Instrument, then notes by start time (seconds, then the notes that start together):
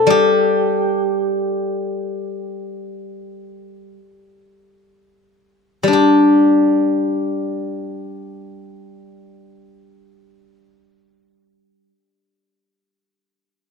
guzheng
Already playing: A4 C5 D5
0.07 G3 G4
5.83 G3
5.88 D4
5.93 G4